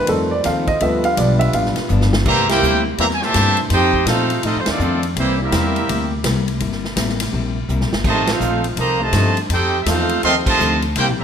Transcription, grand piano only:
0.06 D#3 G3 A3 A4
0.31 D5
0.46 F5
0.68 D#5
0.81 F3 A3 B3 E5
1.05 F5
1.18 D5
1.39 E5
1.55 F5

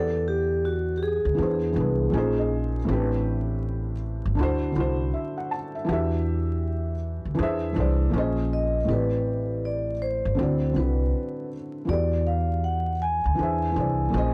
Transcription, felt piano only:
Already playing: E3 B3 G4 F#5
0.00 D5
1.35 E3 B3 D4
1.40 G#4 C5
1.72 E3 B3 D4
1.78 G#4 B4
2.10 A#2 F3 C#4 G#5
2.14 D#4 G#4 C5
2.38 D#5
2.85 A2 E3 C4
2.90 D4 G4 B4
4.35 D3 D4
4.39 E4 F#4 C5
4.72 D3 D4
4.76 E4 F#4
4.80 C5
5.14 E5
5.38 F#5
5.51 A5
5.75 E5
5.84 E3 D4 F#4
5.91 G4 E5
7.34 E3 D4
7.39 G#4 C5
7.43 E5
7.72 E3 D4 G#4
7.78 C5 D5
8.10 A#2 F3 C#4
8.15 G#4 C5 D#5
8.85 A2 E3 C4
8.90 G4 B4 D5
10.35 D3 C4
10.39 E4 F#4 D5
10.72 D3 C4 E4
10.78 F#4 B4
11.85 E3 B3 F#4
11.91 G4 D5
13.35 E3 D4 G#4
13.41 C5 E5
13.72 E3 D4
13.76 G#4 C5 D5
14.10 A#2 F3 C#4
14.14 G#4 C5 D#5

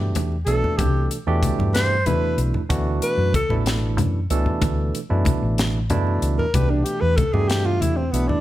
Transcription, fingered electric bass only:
Already playing: G2
0.15 E2
0.46 B1
0.79 C2
1.27 E2
1.58 G2
2.06 E2
2.38 B1
2.70 D2
3.18 F#2
3.49 A1
3.97 F#2
4.30 C#2
4.62 D2
5.11 F#2
5.42 A1
5.90 F#2
6.22 C#2
6.54 C2
7.02 E2
7.34 G2
7.81 E2
8.13 B1

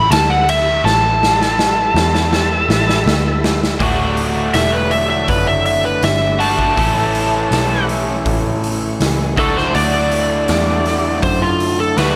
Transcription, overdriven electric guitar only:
3.79 D2 A2 D3 A3 F#4
6.39 D2 A2 D3 A3 F#4
6.77 A2 E3 A3 C#4 E4 A4
9.36 D2 A2 D3 A3 F#4
11.97 D2 A2 D3 A3 F#4

